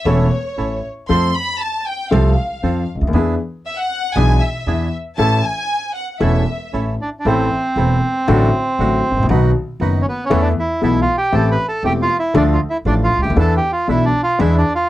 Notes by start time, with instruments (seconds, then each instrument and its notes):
0.05 upright bass E1, grand piano E1 E2 E3 A3 C#4 A4, bandoneon C#4 E4 A4, violin section C#5
0.57 upright bass A1, grand piano A1 A2, bandoneon C#4 E4 A4
1.09 grand piano F2 F3 A3 C4 A4, upright bass F2, bandoneon C4 F4 A4, violin section C6
1.34 violin section B5
1.61 violin section A5
1.86 violin section G5
2.11 grand piano C2 C3 F3 A3 C4 A4, upright bass C2, bandoneon C4 F4 A4, violin section F5
2.63 upright bass F2, grand piano F2 F3, bandoneon C4 F4 A4
2.95 upright bass C#2, grand piano C#2
3.01 upright bass D2, grand piano D2
3.07 upright bass D#2, grand piano D#2
3.13 upright bass E2, grand piano E2 E3 B3 D4 G#4, bandoneon D4 E4 G#4
3.66 violin section E5
3.78 violin section F#5
4.15 upright bass B1, grand piano B1 B2 E3 B3 D4 G#4, bandoneon D4 E4 G#4, violin section G#5
4.40 violin section E5
4.66 upright bass E2, grand piano E2 E3, bandoneon D4 E4 G#4
5.18 upright bass A1, grand piano A1 A2 E3 A3 C#4 A4, bandoneon C#4 E4 A4, violin section A5
5.43 violin section G#5
5.95 violin section F#5
6.13 violin section F#5
6.20 upright bass E1, grand piano E1 E2 E3 A3 C#4 A4, bandoneon C#4 E4 A4, violin section E5
6.73 upright bass A1, grand piano A1 A2, bandoneon C#4 E4 A4
7.02 bandoneon D4
7.20 bandoneon D4
7.25 upright bass A1, grand piano A1 A2 E3 A3 C4 A4, bandoneon C4 E4 A4
7.76 upright bass E1, grand piano E1 E2 E3 A3 C4 A4, bandoneon C4 E4 A4
8.28 upright bass A1, grand piano A1 A2 D3 F#3 A3 F#4, bandoneon D4 F#4 A4
8.79 upright bass A1, grand piano A1 A2 D3 F#3 A3 F#4, bandoneon D4 F#4 A4
9.11 upright bass G#1, grand piano G#1
9.17 upright bass A1, grand piano A1
9.23 upright bass A#1, grand piano A#1
9.29 upright bass B1, grand piano B1 B2 D#3 F#3 B3 F#4, bandoneon D#4 F#4 B4
9.80 upright bass F#1, grand piano F#1 F#2 D#3 F#3 B3 F#4, bandoneon D#4 F#4 B4
10.02 bandoneon C#4
10.09 bandoneon B3
10.25 bandoneon C#4
10.30 grand piano E2 E3 A3 B3 A4, upright bass E2, bandoneon B3 E4 A4
10.41 bandoneon D4
10.59 bandoneon E4
10.81 grand piano B1 B2 E3 A3 B3 A4, upright bass B1, bandoneon B3 E4 A4
11.02 bandoneon F4
11.18 bandoneon G4
11.32 upright bass A1, grand piano A1 A2 E3 A3 C4 G4, bandoneon A3 C4 G4 A4
11.52 bandoneon B4
11.68 bandoneon A4
11.83 upright bass E1, grand piano E1 E2 E3 A3 C4 G4, bandoneon A3 C4 G4
12.02 bandoneon F4
12.19 bandoneon E4
12.34 grand piano D2 D3 F3 A3 D4 A4, upright bass D2, bandoneon A3 D4 F4
12.53 bandoneon F4
12.70 bandoneon E4
12.85 upright bass A1, grand piano A1 A2 F3 A3 D4 A4, bandoneon A3 D4 F4
13.04 bandoneon F4
13.17 upright bass C#2, grand piano C#2
13.22 upright bass D2, grand piano D2, bandoneon G4
13.30 upright bass D#2, grand piano D#2
13.36 grand piano E2 E3 B3 D4 A4, upright bass E2, bandoneon A3 D4 E4 A4
13.57 bandoneon G4
13.72 bandoneon F4
13.87 upright bass B1, grand piano B1 B2 E3 B3 D4 A4, bandoneon A3 D4 E4
14.05 bandoneon D4
14.23 bandoneon F4
14.39 grand piano E2 E3 B3 D4 G#4, upright bass E2, bandoneon G#3 D4 E4
14.58 bandoneon D4
14.75 bandoneon F4